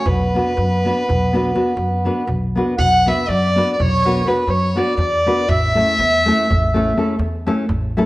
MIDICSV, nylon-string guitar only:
0, 0, Header, 1, 2, 480
1, 0, Start_track
1, 0, Key_signature, 2, "minor"
1, 0, Tempo, 493421
1, 52, Time_signature, 11, 3, 24, 8
1, 7838, End_track
2, 0, Start_track
2, 0, Title_t, "Nylon-string guitar"
2, 0, Program_c, 0, 24
2, 338, Note_on_c, 0, 59, 66
2, 347, Note_on_c, 0, 62, 59
2, 353, Note_on_c, 0, 66, 66
2, 356, Note_on_c, 0, 71, 62
2, 508, Note_off_c, 0, 59, 0
2, 513, Note_off_c, 0, 62, 0
2, 514, Note_off_c, 0, 66, 0
2, 517, Note_off_c, 0, 71, 0
2, 826, Note_on_c, 0, 59, 76
2, 831, Note_on_c, 0, 62, 68
2, 833, Note_on_c, 0, 66, 66
2, 839, Note_on_c, 0, 71, 85
2, 1000, Note_off_c, 0, 59, 0
2, 1003, Note_off_c, 0, 62, 0
2, 1003, Note_off_c, 0, 66, 0
2, 1007, Note_off_c, 0, 71, 0
2, 1294, Note_on_c, 0, 59, 77
2, 1303, Note_on_c, 0, 62, 77
2, 1307, Note_on_c, 0, 66, 70
2, 1315, Note_on_c, 0, 71, 88
2, 1461, Note_off_c, 0, 59, 0
2, 1466, Note_off_c, 0, 62, 0
2, 1466, Note_off_c, 0, 66, 0
2, 1471, Note_off_c, 0, 71, 0
2, 1508, Note_on_c, 0, 59, 62
2, 1514, Note_on_c, 0, 62, 63
2, 1520, Note_on_c, 0, 66, 64
2, 1527, Note_on_c, 0, 71, 79
2, 1672, Note_off_c, 0, 59, 0
2, 1674, Note_off_c, 0, 62, 0
2, 1678, Note_off_c, 0, 66, 0
2, 1681, Note_off_c, 0, 71, 0
2, 1992, Note_on_c, 0, 59, 73
2, 1999, Note_on_c, 0, 62, 76
2, 2006, Note_on_c, 0, 66, 75
2, 2011, Note_on_c, 0, 71, 85
2, 2165, Note_off_c, 0, 59, 0
2, 2168, Note_off_c, 0, 62, 0
2, 2171, Note_off_c, 0, 66, 0
2, 2174, Note_off_c, 0, 71, 0
2, 2486, Note_on_c, 0, 59, 74
2, 2496, Note_on_c, 0, 62, 71
2, 2502, Note_on_c, 0, 66, 69
2, 2509, Note_on_c, 0, 71, 87
2, 2659, Note_off_c, 0, 59, 0
2, 2665, Note_off_c, 0, 62, 0
2, 2666, Note_off_c, 0, 66, 0
2, 2671, Note_off_c, 0, 71, 0
2, 2975, Note_on_c, 0, 59, 65
2, 2981, Note_on_c, 0, 62, 70
2, 2988, Note_on_c, 0, 66, 64
2, 2991, Note_on_c, 0, 71, 76
2, 3151, Note_off_c, 0, 59, 0
2, 3154, Note_off_c, 0, 62, 0
2, 3158, Note_off_c, 0, 66, 0
2, 3158, Note_off_c, 0, 71, 0
2, 3458, Note_on_c, 0, 59, 65
2, 3463, Note_on_c, 0, 62, 67
2, 3470, Note_on_c, 0, 66, 68
2, 3479, Note_on_c, 0, 71, 83
2, 3640, Note_off_c, 0, 59, 0
2, 3642, Note_off_c, 0, 62, 0
2, 3646, Note_off_c, 0, 66, 0
2, 3650, Note_off_c, 0, 71, 0
2, 3941, Note_on_c, 0, 59, 65
2, 3944, Note_on_c, 0, 62, 73
2, 3948, Note_on_c, 0, 66, 64
2, 3956, Note_on_c, 0, 71, 83
2, 4106, Note_off_c, 0, 62, 0
2, 4107, Note_off_c, 0, 59, 0
2, 4110, Note_off_c, 0, 66, 0
2, 4114, Note_off_c, 0, 71, 0
2, 4141, Note_on_c, 0, 59, 67
2, 4149, Note_on_c, 0, 62, 62
2, 4158, Note_on_c, 0, 66, 65
2, 4164, Note_on_c, 0, 71, 73
2, 4309, Note_off_c, 0, 59, 0
2, 4313, Note_off_c, 0, 62, 0
2, 4318, Note_off_c, 0, 66, 0
2, 4321, Note_off_c, 0, 71, 0
2, 4626, Note_on_c, 0, 59, 76
2, 4632, Note_on_c, 0, 62, 68
2, 4638, Note_on_c, 0, 66, 68
2, 4643, Note_on_c, 0, 71, 80
2, 4802, Note_off_c, 0, 59, 0
2, 4803, Note_off_c, 0, 62, 0
2, 4807, Note_off_c, 0, 66, 0
2, 4809, Note_off_c, 0, 71, 0
2, 5120, Note_on_c, 0, 59, 81
2, 5126, Note_on_c, 0, 62, 79
2, 5134, Note_on_c, 0, 66, 71
2, 5134, Note_on_c, 0, 71, 90
2, 5294, Note_off_c, 0, 59, 0
2, 5298, Note_off_c, 0, 62, 0
2, 5299, Note_off_c, 0, 66, 0
2, 5301, Note_off_c, 0, 71, 0
2, 5596, Note_on_c, 0, 57, 81
2, 5600, Note_on_c, 0, 61, 72
2, 5605, Note_on_c, 0, 64, 66
2, 5616, Note_on_c, 0, 69, 82
2, 5779, Note_off_c, 0, 57, 0
2, 5779, Note_off_c, 0, 61, 0
2, 5783, Note_off_c, 0, 64, 0
2, 5788, Note_off_c, 0, 69, 0
2, 6086, Note_on_c, 0, 57, 88
2, 6093, Note_on_c, 0, 61, 79
2, 6106, Note_on_c, 0, 64, 78
2, 6111, Note_on_c, 0, 69, 90
2, 6269, Note_off_c, 0, 57, 0
2, 6273, Note_off_c, 0, 61, 0
2, 6280, Note_off_c, 0, 64, 0
2, 6281, Note_off_c, 0, 69, 0
2, 6556, Note_on_c, 0, 57, 95
2, 6563, Note_on_c, 0, 61, 79
2, 6573, Note_on_c, 0, 64, 72
2, 6574, Note_on_c, 0, 69, 98
2, 6728, Note_off_c, 0, 57, 0
2, 6732, Note_off_c, 0, 61, 0
2, 6737, Note_off_c, 0, 64, 0
2, 6737, Note_off_c, 0, 69, 0
2, 6780, Note_on_c, 0, 57, 81
2, 6785, Note_on_c, 0, 61, 77
2, 6785, Note_on_c, 0, 64, 77
2, 6793, Note_on_c, 0, 69, 95
2, 6944, Note_off_c, 0, 57, 0
2, 6945, Note_off_c, 0, 61, 0
2, 6946, Note_off_c, 0, 64, 0
2, 6950, Note_off_c, 0, 69, 0
2, 7262, Note_on_c, 0, 57, 97
2, 7263, Note_on_c, 0, 61, 88
2, 7274, Note_on_c, 0, 64, 77
2, 7274, Note_on_c, 0, 69, 99
2, 7432, Note_off_c, 0, 61, 0
2, 7433, Note_off_c, 0, 57, 0
2, 7438, Note_off_c, 0, 69, 0
2, 7439, Note_off_c, 0, 64, 0
2, 7751, Note_on_c, 0, 57, 96
2, 7757, Note_on_c, 0, 61, 86
2, 7761, Note_on_c, 0, 64, 93
2, 7767, Note_on_c, 0, 69, 106
2, 7838, Note_off_c, 0, 57, 0
2, 7838, Note_off_c, 0, 61, 0
2, 7838, Note_off_c, 0, 64, 0
2, 7838, Note_off_c, 0, 69, 0
2, 7838, End_track
0, 0, End_of_file